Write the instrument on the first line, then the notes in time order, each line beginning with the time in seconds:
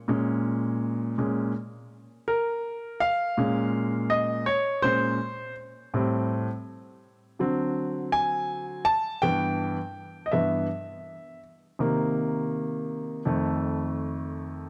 grand piano
0.08 A#2 G#3 C#4
1.18 A#2 G#3 C#4
2.28 A#4
3.00 F5
3.37 A#2 G#3 C#4
4.10 D#5
4.46 C#5
4.82 A#2 G#3 C#4 C5
5.94 A2 G3 C4
7.39 D3 F#3 C4
8.12 G#5
8.85 A5
9.22 G2 E3 B3 G5
10.26 D#5
10.32 G2 E3 B3 E5
11.79 C3 D#3 A#3
13.25 F2 D#3 A3